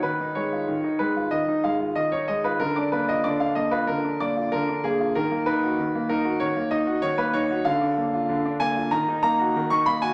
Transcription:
\new Staff \with { instrumentName = "Grand piano" } { \time 4/4 \key ees \minor \tempo 4 = 95 << { ces''8 des''4 ces''8 ees''8 f''8 ees''16 des''16 ees''16 ces''16 | bes'16 d''16 ces''16 ees''16 d''16 f''16 ees''16 ces''16 bes'8 d''8 bes'8 aes'8 | bes'8 ces''4 bes'8 des''8 ees''8 des''16 ces''16 des''8 | f''4. aes''8 bes''8 bes''8. des'''16 ces'''16 aes''16 | } \\ { ees16 ees'16 aes16 f'16 ees16 ees'16 aes16 f'16 ees16 ees'16 aes16 f'16 ees16 ees'16 aes16 f'16 | d16 d'16 bes16 f'16 d16 d'16 bes16 f'16 d16 d'16 bes16 f'16 d16 d'16 bes16 f'16 | ees16 bes16 ees'16 ges'16 ees16 bes16 ees'16 ges'16 ees16 bes16 ees'16 ges'16 ees16 bes16 ees'16 ges'16 | d16 d'16 bes16 f'16 d16 d'16 bes16 f'16 ees16 ees'16 bes16 ges'16 ees16 ees'16 bes16 ges'16 | } >> }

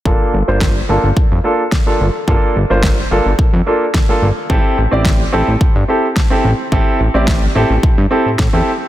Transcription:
<<
  \new Staff \with { instrumentName = "Grand piano" } { \time 4/4 \key g \dorian \tempo 4 = 108 <bes d' f' a'>8 r16 <bes d' f' c''>8 r16 <bes d' f' a'>16 r8. <bes d' f' a'>16 r8 <bes d' f' a'>16 r8 | <bes d' f' a'>8 r16 <bes d' f' c''>8 r16 <bes d' f' a'>16 r8. <bes d' f' a'>16 r8 <bes d' f' a'>16 r8 | <c' e' g' a'>8 r16 <c' e' g' d''>8 r16 <c' e' g' a'>16 r8. <c' e' g' a'>16 r8 <c' e' g' a'>16 r8 | <c' e' g' a'>8 r16 <c' e' g' d''>8 r16 <c' e' g' a'>16 r8. <c' e' g' a'>16 r8 <c' e' g' a'>16 r8 | }
  \new Staff \with { instrumentName = "Analog synth bass" } { \clef bass \time 4/4 \key g \dorian g,,16 r16 g,,16 g,,8 r16 g,,16 g,,16 f,16 f,16 r4 g,,16 r16 | g,,16 r16 g,,16 g,,8 r16 g,,16 g,,16 r16 f,16 r4 g,,16 r16 | a,,16 r16 a,,16 a,,8 r16 a,,16 a,,16 g,16 g,16 r4 a,,16 r16 | a,,16 r16 a,,16 a,,8 r16 a,,16 a,,16 r16 g,16 r16 a,16 a,16 e,16 r8 | }
  \new DrumStaff \with { instrumentName = "Drums" } \drummode { \time 4/4 bd4 <bd sn>4 bd4 <bd sn>4 | bd4 <bd sn>4 bd4 <bd sn>4 | bd4 <bd sn>4 bd4 <bd sn>4 | bd4 <bd sn>4 bd4 <bd sn>4 | }
>>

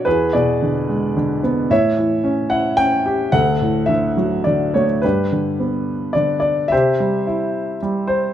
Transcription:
<<
  \new Staff \with { instrumentName = "Grand piano" } { \time 3/4 \key d \major \tempo 4 = 109 << { b'8 d''2 r8 | e''4. fis''8 g''4 | fis''4 e''4 d''8 cis''8 | \key g \major b'2 d''8 d''8 |
e''2 r8 c''8 | } \\ { gis'8 gis'2 r8 | cis''4. r4. | a'4. r4. | <d' g'>2 r4 |
<g' c''>2 r4 | } >> }
  \new Staff \with { instrumentName = "Grand piano" } { \clef bass \time 3/4 \key d \major e,8 b,8 d8 gis8 d8 b8 | a,8 e8 cis'8 e'8 cis'8 g'8 | d,8 a,8 d8 fis8 d8 a8 | \key g \major g,8 d8 b4 d4 |
c8 g8 e'4 g4 | }
>>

